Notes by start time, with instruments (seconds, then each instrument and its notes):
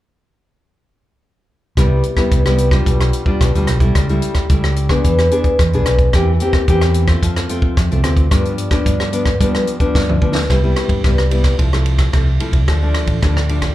1.77 fingered electric bass C2, nylon-string guitar C3 G3 B3 E4, kick, cross-stick, closed hi-hat
2.03 closed hi-hat
2.17 nylon-string guitar G3 B3 E4, kick, cross-stick
2.32 fingered electric bass C2, nylon-string guitar G2, kick, closed hi-hat
2.46 nylon-string guitar G3 B3 E4, cross-stick, closed hi-hat
2.58 closed hi-hat
2.71 nylon-string guitar G3 D4 F4, kick, cross-stick
2.86 fingered electric bass B1, nylon-string guitar B2, kick, closed hi-hat
3.01 cross-stick, closed hi-hat
3.13 closed hi-hat
3.26 nylon-string guitar G3 D4 F4, kick
3.41 fingered electric bass B1, nylon-string guitar B2, kick, cross-stick, closed hi-hat
3.55 fingered electric bass D2, nylon-string guitar G3 D4 F4, closed hi-hat
3.67 fingered electric bass B1, cross-stick, closed hi-hat
3.80 nylon-string guitar G3 A3 E4, kick, closed hi-hat
3.95 fingered electric bass C#2, nylon-string guitar C#3, kick, cross-stick, closed hi-hat
4.09 nylon-string guitar G3 A3 E4, closed hi-hat
4.22 closed hi-hat
4.35 kick, cross-stick, closed hi-hat
4.49 fingered electric bass C#2, nylon-string guitar C#3 G3 A3 E4, kick, closed hi-hat
4.64 cross-stick
4.76 closed hi-hat
4.89 nylon-string guitar B3 D4 G#4, kick, cross-stick
5.04 fingered electric bass E2, nylon-string guitar E3, kick, closed hi-hat
5.19 cross-stick, closed hi-hat
5.31 nylon-string guitar B3 D4 G#4, closed hi-hat
5.44 kick, closed hi-hat
5.59 fingered electric bass E2, nylon-string guitar B2, kick, cross-stick, closed hi-hat
5.73 fingered electric bass B1, nylon-string guitar B3 D4 G#4, closed hi-hat
5.86 fingered electric bass B1, cross-stick, closed hi-hat
5.98 kick, closed hi-hat
6.13 fingered electric bass E2, nylon-string guitar E3 A#3 C4 G4, kick, cross-stick, closed hi-hat
6.40 nylon-string guitar A#3 C4 G4, closed hi-hat
6.53 kick, cross-stick
6.68 fingered electric bass E2, nylon-string guitar E3 A#3 C4 G4, kick, closed hi-hat
6.82 cross-stick, closed hi-hat
6.94 closed hi-hat
7.08 nylon-string guitar A3 C4 F4, kick, cross-stick
7.23 fingered electric bass F2, nylon-string guitar F3, kick, closed hi-hat
7.36 cross-stick, closed hi-hat
7.49 nylon-string guitar A3 C4 F4, closed hi-hat
7.62 kick
7.77 fingered electric bass F2, nylon-string guitar C3, kick, cross-stick, closed hi-hat
7.91 fingered electric bass C2, nylon-string guitar A3 C4 F4, closed hi-hat
8.04 fingered electric bass D2, nylon-string guitar A3 C4 F4, cross-stick, closed hi-hat
8.17 kick, closed hi-hat
8.31 nylon-string guitar G2 F3 B3 D4, fingered electric bass G2, kick, cross-stick, closed hi-hat
8.45 closed hi-hat
8.58 closed hi-hat
8.71 nylon-string guitar F3 B3 D4, kick, cross-stick, closed hi-hat
8.86 fingered electric bass G2, nylon-string guitar D3, kick, closed hi-hat
9.00 cross-stick
9.12 nylon-string guitar F3 B3 D4, closed hi-hat
9.26 kick, cross-stick
9.40 nylon-string guitar G2 F3 B3 D4, fingered electric bass G3, kick, closed hi-hat
9.55 cross-stick, closed hi-hat
9.67 closed hi-hat
9.80 nylon-string guitar F3 B3 D4, kick, closed hi-hat
9.95 fingered electric bass G2, nylon-string guitar D3, kick, snare
10.09 fingered electric bass D2, mid tom
10.21 fingered electric bass D2, nylon-string guitar F3 B3 D4, kick
10.35 snare
10.49 fingered electric bass C2, nylon-string guitar C3 G3 B3 E4, kick, cross-stick, ride
10.63 nylon-string guitar G3 B3 E4
10.76 cross-stick, ride
10.88 fingered electric bass G2, kick, ride
11.04 fingered electric bass C2, nylon-string guitar G2 G3 B3 E4, kick, cross-stick, ride
11.18 cross-stick
11.31 nylon-string guitar G3 B3 E4, ride
11.44 kick, cross-stick, ride
11.58 fingered electric bass C2, nylon-string guitar C3 F3 A3 E4, kick, ride
11.73 nylon-string guitar F3 A3 E4, cross-stick
11.86 ride
11.99 kick, cross-stick, ride
12.13 fingered electric bass C2, nylon-string guitar C3 F3 A3 E4, kick, cross-stick, ride
12.40 nylon-string guitar F3 A3 E4, ride
12.52 fingered electric bass C2, kick, ride
12.68 fingered electric bass D2, nylon-string guitar D3 F3 A3 D4, kick, cross-stick, ride
12.82 nylon-string guitar F3 A3 D4
12.94 cross-stick, ride
13.06 fingered electric bass A1, kick, ride
13.22 fingered electric bass D2, nylon-string guitar A2 F3 A3 D4, kick, cross-stick, ride
13.37 cross-stick
13.49 nylon-string guitar F3 A3 D4, ride
13.62 kick, cross-stick, ride